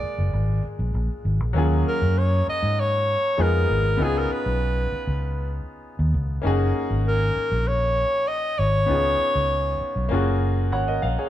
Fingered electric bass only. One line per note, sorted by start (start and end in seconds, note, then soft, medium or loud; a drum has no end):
0.03 muted fingered electric bass stroke soft
0.18 0.31 F#1 medium
0.33 0.59 G#1 loud
0.64 muted fingered electric bass stroke soft
0.79 0.92 A#1 medium
0.94 1.07 A#1 medium
1.25 1.40 G#1 medium
1.40 1.53 A#1 medium
1.55 1.81 D#2 loud
2.02 2.41 F#2 loud
2.48 muted fingered electric bass stroke soft
2.63 3.15 G#2 medium
3.39 3.65 F2 medium
3.70 3.96 G#1 medium
4.00 4.26 C#2 loud
4.46 4.85 B1 medium
4.92 muted fingered electric bass stroke medium
5.07 5.59 C#2 medium
5.99 6.12 D#2 medium
6.14 6.40 C#2 medium
6.44 6.71 F#1 loud
6.90 7.29 G#1 medium
7.36 muted fingered electric bass stroke soft
7.52 8.04 A#1 medium
8.59 8.85 G#1 medium
8.90 9.15 C#2 loud
9.35 9.74 C#2 medium
9.81 muted fingered electric bass stroke soft
9.96 10.09 B1 medium
10.11 10.72 F#1 loud
10.72 10.98 G#1 medium
11.03 11.16 A#1 medium